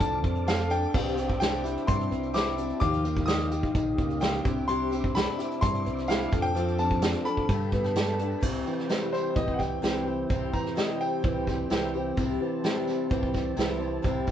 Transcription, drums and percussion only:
0.00 kick, closed hi-hat, tambourine
0.13 tambourine
0.24 kick, closed hi-hat
0.35 closed hi-hat
0.47 snare, closed hi-hat, tambourine
0.59 snare, closed hi-hat
0.70 closed hi-hat, tambourine
0.83 tambourine
0.94 kick, crash
1.17 closed hi-hat, tambourine
1.29 kick
1.41 snare, closed hi-hat, tambourine
1.53 tambourine
1.64 closed hi-hat, tambourine
1.77 closed hi-hat
1.88 kick, closed hi-hat, tambourine
2.01 closed hi-hat
2.11 closed hi-hat, tambourine
2.23 closed hi-hat, tambourine
2.34 snare, closed hi-hat, tambourine
2.46 snare, closed hi-hat
2.58 closed hi-hat, tambourine
2.70 closed hi-hat, tambourine
2.81 kick, closed hi-hat
2.94 closed hi-hat
3.05 closed hi-hat, tambourine
3.16 kick, closed hi-hat, tambourine
3.27 snare, closed hi-hat, tambourine
3.39 closed hi-hat
3.51 closed hi-hat, tambourine
3.63 kick
3.75 kick, closed hi-hat, tambourine
3.98 kick, closed hi-hat, tambourine
4.10 closed hi-hat, tambourine
4.21 snare, closed hi-hat, tambourine
4.34 closed hi-hat
4.45 kick, closed hi-hat, tambourine
4.56 tambourine
4.69 closed hi-hat
4.92 closed hi-hat, tambourine
5.04 kick, tambourine
5.15 snare, closed hi-hat, tambourine
5.38 closed hi-hat, tambourine
5.51 closed hi-hat
5.62 kick, closed hi-hat, tambourine
5.75 closed hi-hat
5.85 closed hi-hat, tambourine
5.96 snare, closed hi-hat, tambourine
6.08 snare, closed hi-hat, tambourine
6.22 closed hi-hat
6.32 kick, closed hi-hat, tambourine
6.45 closed hi-hat
6.55 closed hi-hat, tambourine
6.68 closed hi-hat
6.78 closed hi-hat, tambourine
6.91 kick, closed hi-hat
7.02 snare, closed hi-hat, tambourine
7.14 closed hi-hat, tambourine
7.26 closed hi-hat
7.37 kick
7.49 kick, closed hi-hat, tambourine
7.61 tambourine
7.72 kick, closed hi-hat, tambourine
7.84 snare, closed hi-hat
7.95 snare, closed hi-hat, tambourine
8.07 snare, closed hi-hat
8.19 closed hi-hat
8.32 tambourine
8.43 kick, crash, tambourine
8.67 tambourine
8.79 snare
8.89 snare, closed hi-hat, tambourine
9.13 snare, tambourine
9.36 kick, closed hi-hat, tambourine
9.48 kick
9.60 kick, snare, tambourine
9.83 snare, closed hi-hat, tambourine
10.07 tambourine
10.30 kick, closed hi-hat, tambourine
10.54 kick, tambourine
10.66 snare
10.77 snare, closed hi-hat, tambourine
11.01 tambourine
11.24 kick, closed hi-hat, tambourine
11.47 kick, snare, tambourine
11.70 snare, closed hi-hat, tambourine
11.94 tambourine
12.17 kick, closed hi-hat, tambourine
12.64 snare, closed hi-hat, tambourine
12.87 snare, tambourine
13.10 kick, closed hi-hat, tambourine
13.23 kick
13.34 kick, snare, tambourine
13.57 snare, closed hi-hat, tambourine
13.80 tambourine
14.04 kick, closed hi-hat, tambourine
14.27 kick, tambourine

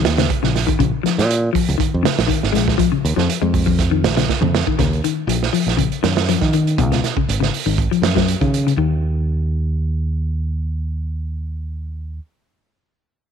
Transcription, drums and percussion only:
0.05 snare, closed hi-hat
0.18 snare, closed hi-hat
0.30 kick, closed hi-hat
0.44 snare
0.56 snare, open hi-hat
0.69 kick, closed hi-hat
0.80 kick, closed hi-hat
1.06 snare, closed hi-hat
1.19 snare, closed hi-hat
1.31 closed hi-hat
1.55 kick, open hi-hat
1.69 closed hi-hat
1.80 kick, closed hi-hat
2.05 snare, closed hi-hat
2.19 snare, closed hi-hat
2.30 kick, closed hi-hat
2.43 snare
2.55 snare, closed hi-hat
2.68 kick, snare
2.79 kick, closed hi-hat
3.05 closed hi-hat
3.18 snare
3.30 closed hi-hat
3.54 kick, open hi-hat
3.67 kick
3.79 kick, snare, closed hi-hat
4.04 snare, closed hi-hat
4.17 snare, closed hi-hat
4.29 kick, snare
4.43 mid tom
4.55 snare
4.67 kick
4.79 kick, snare, closed hi-hat
4.93 closed hi-hat
5.04 closed hi-hat
5.29 closed hi-hat
5.43 snare
5.54 open hi-hat
5.68 snare, closed hi-hat
5.79 kick, closed hi-hat
5.92 closed hi-hat
6.04 snare, closed hi-hat
6.17 snare
6.29 snare, closed hi-hat
6.41 kick, snare
6.53 closed hi-hat
6.67 closed hi-hat
6.78 kick, closed hi-hat
6.92 snare, closed hi-hat
7.04 snare, closed hi-hat
7.17 kick
7.29 closed hi-hat
7.43 snare
7.54 open hi-hat
7.78 kick, closed hi-hat
7.93 closed hi-hat
8.03 snare, closed hi-hat
8.16 kick, snare, closed hi-hat
8.28 closed hi-hat
8.41 kick, closed hi-hat
8.54 closed hi-hat
8.68 closed hi-hat

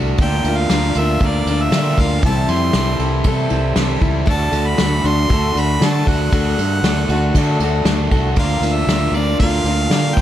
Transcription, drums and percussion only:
0.18 kick, ride
0.44 ride
0.70 snare, ride
0.95 ride
1.20 kick, ride
1.47 ride
1.72 snare, ride
1.98 kick, ride
2.23 kick, ride
2.48 ride
2.73 snare, ride
2.99 ride
3.24 kick, ride
3.50 ride
3.76 snare, ride
4.01 kick, ride
4.27 kick, crash
4.52 ride
4.78 snare, ride
5.05 ride
5.30 kick, ride
5.57 ride
5.82 snare, ride
6.07 kick, ride
6.32 kick, ride
6.58 ride
6.84 snare, ride
7.09 ride
7.35 kick, ride
7.60 ride
7.85 snare, ride
8.11 kick, ride
8.36 kick, ride
8.63 ride
8.89 snare, ride
9.14 ride
9.40 kick, ride
9.66 ride
9.91 snare, ride
10.17 kick, ride

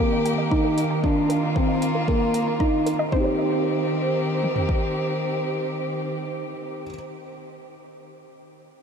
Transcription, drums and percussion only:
0.26 closed hi-hat
0.51 kick
0.78 closed hi-hat
1.04 kick
1.30 closed hi-hat
1.56 kick
1.82 closed hi-hat
2.08 kick
2.34 closed hi-hat
2.60 kick
2.87 closed hi-hat
3.12 kick
4.43 mid tom
4.56 floor tom
4.69 kick

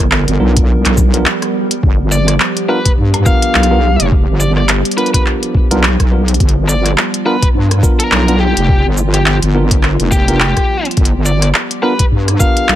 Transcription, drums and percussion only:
0.11 clap
0.28 closed hi-hat
0.57 kick, closed hi-hat
0.85 clap, closed hi-hat
0.97 kick, shaker
1.14 closed hi-hat
1.26 clap
1.42 cross-stick, closed hi-hat
1.71 closed hi-hat
1.83 kick
2.12 shaker
2.28 cross-stick, closed hi-hat
2.40 clap
2.57 closed hi-hat
2.85 kick, closed hi-hat
3.14 cross-stick, closed hi-hat
3.26 kick, shaker
3.42 closed hi-hat
3.55 clap
3.63 closed hi-hat
4.00 closed hi-hat
4.12 kick
4.40 shaker
4.57 cross-stick
4.69 clap, closed hi-hat
4.85 closed hi-hat
4.91 closed hi-hat
4.98 closed hi-hat
5.06 closed hi-hat
5.14 kick, closed hi-hat
5.26 clap
5.43 closed hi-hat
5.55 kick
5.71 closed hi-hat
5.83 clap
6.00 kick, cross-stick, closed hi-hat
6.28 closed hi-hat
6.34 closed hi-hat
6.40 kick, closed hi-hat
6.49 closed hi-hat
6.69 shaker
6.86 cross-stick, closed hi-hat
6.98 clap
7.14 closed hi-hat
7.42 kick, closed hi-hat
7.71 cross-stick, closed hi-hat
7.83 kick, shaker
8.00 closed hi-hat
8.12 clap
8.28 closed hi-hat
8.57 closed hi-hat
8.69 kick
8.97 shaker
9.14 cross-stick, closed hi-hat
9.26 clap
9.43 closed hi-hat
9.71 kick, closed hi-hat
9.83 clap
10.00 closed hi-hat
10.12 kick, shaker
10.28 closed hi-hat
10.40 clap
10.57 kick, cross-stick, closed hi-hat
10.85 closed hi-hat
10.91 closed hi-hat
10.97 kick, closed hi-hat
11.05 closed hi-hat
11.26 shaker
11.42 cross-stick, closed hi-hat
11.54 clap
11.71 closed hi-hat
11.99 kick, closed hi-hat
12.28 cross-stick, closed hi-hat
12.40 kick, shaker
12.57 closed hi-hat
12.69 clap

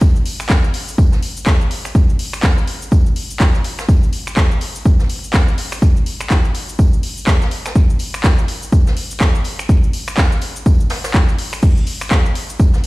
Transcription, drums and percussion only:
0.01 kick, tambourine, cabasa
0.16 cabasa
0.26 open hi-hat, tambourine
0.40 finger snap, cabasa
0.50 kick, snare, clap, tambourine, cabasa
0.64 cabasa
0.74 open hi-hat, tambourine
0.88 cabasa
0.98 kick, tambourine, cabasa
1.12 snare, cabasa
1.22 open hi-hat, tambourine
1.37 cabasa
1.46 kick, snare, clap, tambourine, cabasa
1.61 cabasa
1.71 open hi-hat, tambourine
1.85 finger snap, closed hi-hat, cabasa
1.95 kick, tambourine, cabasa
2.09 cabasa
2.19 open hi-hat, tambourine
2.33 finger snap, cabasa
2.43 kick, snare, clap, tambourine, cabasa
2.58 cabasa
2.67 open hi-hat, tambourine
2.82 cabasa
2.92 kick, tambourine, cabasa
3.06 cabasa
3.16 open hi-hat, tambourine
3.30 cabasa
3.39 kick, snare, clap, tambourine, cabasa
3.55 snare, cabasa
3.64 open hi-hat, tambourine
3.79 finger snap, snare, cabasa
3.89 kick, tambourine, cabasa
4.03 cabasa
4.13 open hi-hat, tambourine
4.27 finger snap, cabasa
4.36 kick, snare, clap, tambourine, cabasa
4.51 cabasa
4.61 open hi-hat, tambourine
4.76 cabasa
4.85 kick, tambourine, cabasa
4.99 snare, cabasa
5.09 open hi-hat, tambourine
5.24 cabasa
5.33 kick, snare, clap, tambourine, cabasa
5.48 cabasa
5.58 open hi-hat, tambourine
5.72 finger snap, closed hi-hat, cabasa
5.82 kick, tambourine, cabasa
5.96 cabasa
6.06 open hi-hat, tambourine
6.21 finger snap, cabasa
6.30 kick, snare, clap, tambourine, cabasa
6.45 cabasa
6.55 open hi-hat, tambourine
6.69 cabasa
6.79 kick, tambourine, cabasa
6.93 cabasa
7.03 open hi-hat, tambourine
7.17 cabasa
7.27 kick, snare, clap, tambourine, cabasa
7.42 snare, cabasa
7.51 open hi-hat, tambourine
7.66 finger snap, snare, cabasa
7.76 kick, tambourine, cabasa
7.90 cabasa
7.99 open hi-hat, tambourine
8.14 finger snap, cabasa
8.24 kick, snare, clap, tambourine, cabasa
8.38 cabasa
8.48 open hi-hat, tambourine
8.63 cabasa
8.72 kick, tambourine, cabasa
8.87 snare, cabasa
8.97 open hi-hat, tambourine
9.11 cabasa
9.21 kick, snare, clap, tambourine, cabasa
9.35 cabasa
9.44 open hi-hat, tambourine
9.59 finger snap, closed hi-hat, cabasa
9.69 kick, tambourine, cabasa
9.84 cabasa
9.93 open hi-hat, tambourine
10.08 finger snap, cabasa
10.17 kick, snare, clap, tambourine, cabasa
10.32 cabasa
10.41 open hi-hat, tambourine
10.56 cabasa
10.66 kick, tambourine, cabasa
10.80 cabasa
10.90 snare, open hi-hat, tambourine
11.04 snare, tambourine, cabasa
11.14 kick, clap, cabasa
11.29 cabasa
11.39 open hi-hat, tambourine
11.53 finger snap, cabasa
11.62 kick, crash, tambourine, cabasa
11.77 cabasa
11.87 open hi-hat, tambourine
12.01 finger snap, cabasa
12.11 kick, snare, clap, tambourine, cabasa
12.25 cabasa
12.35 open hi-hat, tambourine
12.50 cabasa
12.60 kick, tambourine, cabasa
12.73 snare, cabasa
12.84 open hi-hat

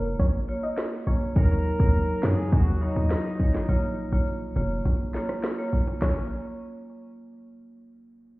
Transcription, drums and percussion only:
0.20 kick, closed hi-hat
0.78 cross-stick, snare, closed hi-hat
1.36 kick, closed hi-hat, high bongo
1.80 kick
1.94 closed hi-hat
2.23 cross-stick, snare, high bongo, low bongo
2.52 kick, closed hi-hat, high bongo
2.96 high bongo
3.11 cross-stick, snare, closed hi-hat
3.40 kick, low bongo
3.55 snare, high bongo
3.69 closed hi-hat, high bongo
4.27 closed hi-hat
4.56 high bongo, low bongo
4.86 closed hi-hat, high bongo
5.14 snare
5.29 cross-stick, high bongo
5.44 cross-stick, snare, closed hi-hat
5.73 low bongo
5.87 high bongo
6.02 kick, snare, clap, high bongo

